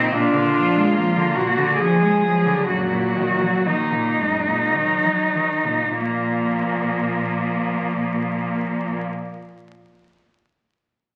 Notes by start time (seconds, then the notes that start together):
Already playing: A#2 C4 D#4
0.13 A#2 D4 F4
0.34 D3
0.56 F3
0.75 G#3
0.93 F3 A#3
1.16 D3
1.35 A#2 F#4
1.57 D3
1.78 F3 G#4
2.01 G#3
2.23 F3 F#3
2.46 D3
2.68 F#2 A#2 F#4
2.93 A#2
3.16 D#3
3.41 F#3
3.66 D#3 A#3 D#4
3.92 A#2
4.18 F#2 G#3
4.47 A#2
4.75 D#3 F#3
5.04 F#3
5.35 D#3
5.66 A#2
5.94 A#2 F3
5.99 A#3